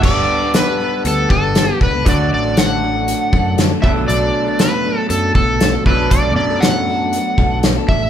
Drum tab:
CC |x-------|--------|--------|--------|
HH |--x-x-x-|x-x-x-x-|x-x-x-x-|x-x-x-x-|
SD |--o---o-|--o---o-|--o---o-|--o---o-|
BD |o----o-o|o----o-o|-----o-o|o----o-o|